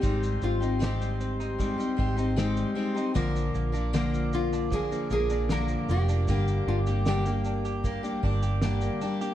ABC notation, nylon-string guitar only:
X:1
M:4/4
L:1/8
Q:1/4=77
K:Ablyd
V:1 name="Nylon-string guitar"
G F G4 z2 | z3 F A A B G- | G F G4 z2 |]